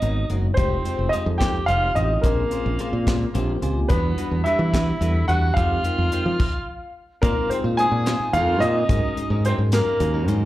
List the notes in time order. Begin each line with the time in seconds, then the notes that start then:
Already playing: D#4 D#5
0.02 G#1 G#3 B3 D#4 F#4 A#4 C#5, closed hi-hat
0.30 F#1 G#3 B3 D#4 F#4 A#4 C#5, closed hi-hat
0.54 F1 G#3 C4 D#4 G4 C5, kick, closed hi-hat
0.58 C4 D#4 F4 G4
0.85 G#3 C4 D#4 F4 G4 G#4 C5, closed hi-hat
0.99 F1
1.09 G#3 C4 D#4 D#5, closed hi-hat
1.13 F4 G4 G#4 C5
1.26 F2
1.38 D#4 G4 C5 G5, kick, snare, closed hi-hat
1.42 G#3
1.66 F1 G#3 C4 D#4 F4 G4 C5 F5, closed hi-hat
1.95 A1 G#3 C4 D#4 F4 G4 C5 D#5, closed hi-hat
2.21 A#1 G#3 A#3 C4 C#4 F4 G#4 A#4 C5, kick, closed hi-hat
2.50 A#3 C4 C#4 F4 G#4 C5, closed hi-hat
2.66 A#1
2.79 G#3 A#3 C4 C#4 F4 G#4 C5, closed hi-hat
2.93 A#2
3.07 G#3 C#4 F4 C5, kick, snare, closed hi-hat
3.34 A#1 G#3 A#3 C4 C#4 F4 G4 C5, closed hi-hat
3.62 C#2 A#3 C4 C#4 F4 G4 C5 G#5, closed hi-hat
3.88 E2 G3 B3 D4 E4 F#4 B4, kick, closed hi-hat
4.18 G3 B3 D4 E4 F#4 B4, closed hi-hat
4.31 E2
4.44 G3 B3 D4 E4 F#4 G4 B4 E5, closed hi-hat
4.59 E3
4.73 G3 D4 F#4 B4, kick, snare, closed hi-hat
5.01 E2 G3 B3 D4 E4 F#4 A4 B4, closed hi-hat
5.28 E2 G3 B3 D4 E4 F#4 G4 B4 F#5, closed hi-hat
5.54 F2 G#3 C4 D#4 F4 G4 C5 F5, kick, closed hi-hat
5.58 G4
5.84 G#3 C4 D#4 F4 G4 A#4 C5, closed hi-hat
5.98 F2
6.12 G#3 C4 D#4 F4 G4 A#4 C5, closed hi-hat
6.26 F3
6.40 kick, crash
7.22 A#2 G#3 A#3 C4 D#4 F4 A#4 C5, kick, closed hi-hat
7.37 D#4 F4 C5
7.50 G#3 C4 D#4 F4 G#4 C5, muted fingered electric bass stroke, closed hi-hat
7.64 A#2 D#4 F4 C5
7.77 G#3 C4 D#4 F4 G#4 C5 G#5, closed hi-hat
7.92 A#2
8.06 G#3 D#4 F4 C5, snare, closed hi-hat
8.20 D#4 F4 C5, muted fingered electric bass stroke
8.33 F2 G#3 C4 D#4 F4 A#4 F5, closed hi-hat
8.47 D#4 F4 C5
8.60 A#2 G#3 C4 D#4 F4 A#4 C5 D#5, closed hi-hat
8.89 G#2 F#3 G#3 C#4 D#4 F#4 A#4, kick, closed hi-hat
9.04 C#4 D#4 A#4
9.16 G#3 C#4 D#4 F#4 G#4, muted fingered electric bass stroke, closed hi-hat
9.30 G#2 C#4 D#4 A#4
9.44 F#3 G#3 C4 C#4 D#4 F#4 A#4 C5, closed hi-hat
9.58 G#2
9.72 F#3 A#3 C#4 D#4 A#4, snare, closed hi-hat
9.86 C#4 D#4 A#4, muted fingered electric bass stroke
10.00 D#2 G#3 C#4 D#4 F#4 A#4, closed hi-hat
10.14 C#4 D#4 A#4
10.28 G#2 F#3 G#3 C#4 D#4 F#4 A#4, closed hi-hat